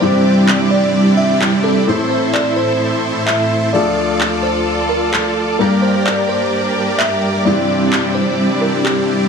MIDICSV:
0, 0, Header, 1, 6, 480
1, 0, Start_track
1, 0, Tempo, 465116
1, 23, Time_signature, 4, 2, 24, 8
1, 9582, End_track
2, 0, Start_track
2, 0, Title_t, "FM electric piano"
2, 0, Program_c, 0, 5
2, 6, Note_on_c, 0, 72, 88
2, 460, Note_off_c, 0, 72, 0
2, 728, Note_on_c, 0, 74, 93
2, 1208, Note_on_c, 0, 76, 96
2, 1230, Note_off_c, 0, 74, 0
2, 1449, Note_on_c, 0, 67, 84
2, 1463, Note_off_c, 0, 76, 0
2, 1688, Note_on_c, 0, 69, 88
2, 1703, Note_off_c, 0, 67, 0
2, 2167, Note_on_c, 0, 72, 84
2, 2190, Note_off_c, 0, 69, 0
2, 2279, Note_off_c, 0, 72, 0
2, 2407, Note_on_c, 0, 74, 89
2, 2646, Note_on_c, 0, 72, 88
2, 2662, Note_off_c, 0, 74, 0
2, 3333, Note_off_c, 0, 72, 0
2, 3367, Note_on_c, 0, 76, 91
2, 3847, Note_on_c, 0, 74, 81
2, 3869, Note_off_c, 0, 76, 0
2, 4300, Note_off_c, 0, 74, 0
2, 4569, Note_on_c, 0, 72, 82
2, 5048, Note_on_c, 0, 70, 77
2, 5070, Note_off_c, 0, 72, 0
2, 5278, Note_off_c, 0, 70, 0
2, 5289, Note_on_c, 0, 69, 78
2, 5768, Note_on_c, 0, 70, 86
2, 5790, Note_off_c, 0, 69, 0
2, 5998, Note_off_c, 0, 70, 0
2, 6007, Note_on_c, 0, 72, 83
2, 6238, Note_off_c, 0, 72, 0
2, 6247, Note_on_c, 0, 74, 88
2, 6477, Note_off_c, 0, 74, 0
2, 6488, Note_on_c, 0, 72, 90
2, 7174, Note_off_c, 0, 72, 0
2, 7207, Note_on_c, 0, 76, 100
2, 7661, Note_off_c, 0, 76, 0
2, 7687, Note_on_c, 0, 74, 87
2, 8141, Note_off_c, 0, 74, 0
2, 8407, Note_on_c, 0, 72, 85
2, 8886, Note_on_c, 0, 70, 78
2, 8910, Note_off_c, 0, 72, 0
2, 8998, Note_off_c, 0, 70, 0
2, 9126, Note_on_c, 0, 67, 80
2, 9580, Note_off_c, 0, 67, 0
2, 9582, End_track
3, 0, Start_track
3, 0, Title_t, "Supersaw synth"
3, 0, Program_c, 1, 81
3, 22, Note_on_c, 1, 55, 75
3, 22, Note_on_c, 1, 60, 67
3, 22, Note_on_c, 1, 62, 70
3, 22, Note_on_c, 1, 64, 69
3, 22, Note_on_c, 1, 67, 71
3, 22, Note_on_c, 1, 74, 84
3, 1913, Note_off_c, 1, 55, 0
3, 1913, Note_off_c, 1, 60, 0
3, 1913, Note_off_c, 1, 62, 0
3, 1913, Note_off_c, 1, 74, 0
3, 1914, Note_off_c, 1, 64, 0
3, 1914, Note_off_c, 1, 67, 0
3, 1942, Note_on_c, 1, 64, 75
3, 1942, Note_on_c, 1, 69, 68
3, 1942, Note_on_c, 1, 72, 84
3, 3833, Note_off_c, 1, 64, 0
3, 3834, Note_off_c, 1, 69, 0
3, 3834, Note_off_c, 1, 72, 0
3, 3863, Note_on_c, 1, 65, 76
3, 3863, Note_on_c, 1, 69, 68
3, 3863, Note_on_c, 1, 74, 85
3, 5754, Note_off_c, 1, 65, 0
3, 5754, Note_off_c, 1, 69, 0
3, 5754, Note_off_c, 1, 74, 0
3, 5782, Note_on_c, 1, 67, 73
3, 5782, Note_on_c, 1, 70, 68
3, 5782, Note_on_c, 1, 74, 83
3, 7673, Note_off_c, 1, 70, 0
3, 7673, Note_off_c, 1, 74, 0
3, 7674, Note_off_c, 1, 67, 0
3, 7702, Note_on_c, 1, 55, 76
3, 7702, Note_on_c, 1, 60, 69
3, 7702, Note_on_c, 1, 62, 69
3, 7702, Note_on_c, 1, 64, 69
3, 7702, Note_on_c, 1, 67, 69
3, 7702, Note_on_c, 1, 74, 84
3, 9582, Note_off_c, 1, 55, 0
3, 9582, Note_off_c, 1, 60, 0
3, 9582, Note_off_c, 1, 62, 0
3, 9582, Note_off_c, 1, 64, 0
3, 9582, Note_off_c, 1, 67, 0
3, 9582, Note_off_c, 1, 74, 0
3, 9582, End_track
4, 0, Start_track
4, 0, Title_t, "Grand piano"
4, 0, Program_c, 2, 0
4, 10, Note_on_c, 2, 43, 68
4, 16, Note_on_c, 2, 52, 64
4, 22, Note_on_c, 2, 60, 63
4, 28, Note_on_c, 2, 62, 64
4, 34, Note_on_c, 2, 67, 76
4, 1907, Note_off_c, 2, 43, 0
4, 1910, Note_off_c, 2, 52, 0
4, 1913, Note_off_c, 2, 60, 0
4, 1917, Note_off_c, 2, 62, 0
4, 1919, Note_off_c, 2, 67, 0
4, 1930, Note_on_c, 2, 45, 69
4, 1936, Note_on_c, 2, 57, 63
4, 1943, Note_on_c, 2, 60, 62
4, 1949, Note_on_c, 2, 64, 62
4, 1955, Note_on_c, 2, 72, 75
4, 3828, Note_off_c, 2, 45, 0
4, 3831, Note_off_c, 2, 57, 0
4, 3834, Note_off_c, 2, 60, 0
4, 3837, Note_off_c, 2, 64, 0
4, 3840, Note_off_c, 2, 72, 0
4, 3851, Note_on_c, 2, 53, 70
4, 3859, Note_on_c, 2, 57, 63
4, 3868, Note_on_c, 2, 62, 63
4, 3876, Note_on_c, 2, 69, 77
4, 5748, Note_off_c, 2, 53, 0
4, 5752, Note_off_c, 2, 57, 0
4, 5756, Note_off_c, 2, 62, 0
4, 5761, Note_off_c, 2, 69, 0
4, 5770, Note_on_c, 2, 43, 69
4, 5776, Note_on_c, 2, 55, 64
4, 5782, Note_on_c, 2, 58, 64
4, 5788, Note_on_c, 2, 62, 65
4, 5795, Note_on_c, 2, 70, 75
4, 7667, Note_off_c, 2, 43, 0
4, 7671, Note_off_c, 2, 55, 0
4, 7674, Note_off_c, 2, 58, 0
4, 7677, Note_off_c, 2, 62, 0
4, 7680, Note_off_c, 2, 70, 0
4, 7690, Note_on_c, 2, 43, 70
4, 7696, Note_on_c, 2, 52, 65
4, 7702, Note_on_c, 2, 60, 64
4, 7708, Note_on_c, 2, 62, 64
4, 7715, Note_on_c, 2, 67, 76
4, 9582, Note_off_c, 2, 43, 0
4, 9582, Note_off_c, 2, 52, 0
4, 9582, Note_off_c, 2, 60, 0
4, 9582, Note_off_c, 2, 62, 0
4, 9582, Note_off_c, 2, 67, 0
4, 9582, End_track
5, 0, Start_track
5, 0, Title_t, "String section"
5, 0, Program_c, 3, 48
5, 0, Note_on_c, 3, 74, 83
5, 23, Note_on_c, 3, 43, 72
5, 23, Note_on_c, 3, 55, 68
5, 23, Note_on_c, 3, 60, 68
5, 23, Note_on_c, 3, 64, 69
5, 1904, Note_off_c, 3, 74, 0
5, 1923, Note_off_c, 3, 55, 0
5, 1924, Note_off_c, 3, 43, 0
5, 1942, Note_on_c, 3, 76, 80
5, 1943, Note_on_c, 3, 45, 74
5, 1943, Note_on_c, 3, 57, 68
5, 3824, Note_off_c, 3, 60, 0
5, 3824, Note_off_c, 3, 64, 0
5, 3843, Note_off_c, 3, 45, 0
5, 3843, Note_off_c, 3, 76, 0
5, 3862, Note_on_c, 3, 38, 75
5, 3862, Note_on_c, 3, 50, 69
5, 3862, Note_on_c, 3, 65, 68
5, 3862, Note_on_c, 3, 69, 83
5, 5744, Note_off_c, 3, 57, 0
5, 5763, Note_off_c, 3, 38, 0
5, 5763, Note_off_c, 3, 50, 0
5, 5763, Note_off_c, 3, 65, 0
5, 5763, Note_off_c, 3, 69, 0
5, 5783, Note_on_c, 3, 43, 76
5, 5783, Note_on_c, 3, 55, 70
5, 5783, Note_on_c, 3, 58, 69
5, 5783, Note_on_c, 3, 62, 69
5, 5783, Note_on_c, 3, 74, 84
5, 7684, Note_off_c, 3, 58, 0
5, 7684, Note_off_c, 3, 62, 0
5, 7703, Note_on_c, 3, 60, 69
5, 7703, Note_on_c, 3, 64, 69
5, 9582, Note_off_c, 3, 43, 0
5, 9582, Note_off_c, 3, 55, 0
5, 9582, Note_off_c, 3, 60, 0
5, 9582, Note_off_c, 3, 64, 0
5, 9582, Note_off_c, 3, 74, 0
5, 9582, End_track
6, 0, Start_track
6, 0, Title_t, "Drums"
6, 500, Note_on_c, 9, 39, 105
6, 603, Note_off_c, 9, 39, 0
6, 1460, Note_on_c, 9, 39, 106
6, 1563, Note_off_c, 9, 39, 0
6, 2420, Note_on_c, 9, 39, 111
6, 2523, Note_off_c, 9, 39, 0
6, 3380, Note_on_c, 9, 39, 106
6, 3483, Note_off_c, 9, 39, 0
6, 4341, Note_on_c, 9, 39, 109
6, 4444, Note_off_c, 9, 39, 0
6, 5300, Note_on_c, 9, 39, 110
6, 5404, Note_off_c, 9, 39, 0
6, 6260, Note_on_c, 9, 39, 113
6, 6363, Note_off_c, 9, 39, 0
6, 7220, Note_on_c, 9, 39, 111
6, 7323, Note_off_c, 9, 39, 0
6, 8180, Note_on_c, 9, 39, 105
6, 8283, Note_off_c, 9, 39, 0
6, 9140, Note_on_c, 9, 39, 103
6, 9243, Note_off_c, 9, 39, 0
6, 9582, End_track
0, 0, End_of_file